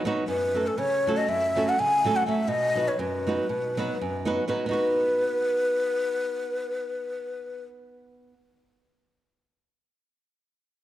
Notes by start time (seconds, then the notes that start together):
0.05 F#3 B3 D#4 F#4 B4
0.28 F#2 B4
0.54 F#3 A3 C#4 F#4 A4
0.67 A4
0.78 C#3 C#5
1.07 F#3 A3 C#4 F#4 A4
1.17 D#5
1.28 F#2 E5
1.56 F#3 A3 C#4 F#4 A4
1.69 F#5
1.79 C#3 G#5
2.04 F#3 A3 C#4 F#4 A4
2.16 F#5
2.26 F#3 A3 C#4 F#4 A4 E5
2.48 B2 D#5
2.75 F#3 B3 D#4 F#4 B4
2.88 C#5
2.99 F#2 B4
3.27 F#3 B3 D#4 F#4 B4
3.49 B2
3.77 F#3 B3 D#4 F#4 B4
4.01 F#2
4.25 F#3 B3 D#4 F#4 B4
4.48 F#3 B3 D#4 F#4 B4
4.66 B3 D#4 B4
4.71 F#4 B4